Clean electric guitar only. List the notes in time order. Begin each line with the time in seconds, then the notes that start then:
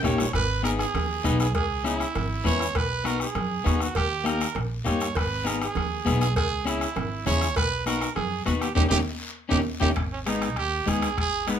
0.03 A#3 D#4 G4
0.63 B3 D#4 G#4
1.24 B3 D#4 B4
1.84 C#4 E4 G#4
2.44 C#4 E4 B4
3.04 B3 D#4 F#4
3.64 B3 D#4 F#4
4.24 A#3 D#4 G4
4.84 A#3 D#4 G4
5.44 B3 D#4 G#4
6.06 B3 D#4 G#4
6.65 C#4 E4 G#4
7.26 C#4 E4 G#4
7.86 B3 D#4 F#4
8.46 B3 D#4 F#4
8.75 C#4 D#4 G4
8.89 C#4 D#4 G4
9.49 C#4 D#4 G4
9.80 C#4 D#4 G4
10.26 G#3 B3 D#4
10.86 G#3 B3 D#4
11.47 G#3 B3 D#4